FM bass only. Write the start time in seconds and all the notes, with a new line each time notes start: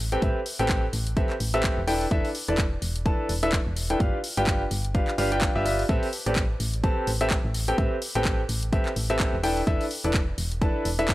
Already playing: A1
0.22 A1
0.59 A1
0.93 A1
1.40 A1
1.78 E1
2.11 E1
2.48 E1
2.82 E1
3.29 E1
3.67 E1
4.00 G1
4.38 G1
4.71 G1
5.18 G1
5.56 G1
5.89 A1
6.26 A1
6.60 A1
7.07 A1
7.45 A1
7.78 A1
8.15 A1
8.49 A1
8.96 A1
9.33 E1
9.67 E1
10.04 E1
10.38 E1
10.85 E1